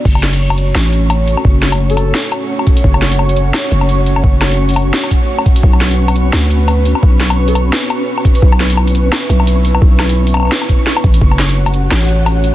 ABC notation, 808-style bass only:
X:1
M:4/4
L:1/8
Q:"Swing 16ths" 1/4=172
K:F#m
V:1 name="808-style bass" clef=bass
F,,,4 A,,,3 z | F,,,4 z4 | F,,,4 z F,,,3 | F,,,4 z4 |
B,,,4 D,,3 z | B,,,4 z4 | B,,,4 z B,,,3 | B,,,4 z3 A,,, |
F,,,4 A,,,3 z |]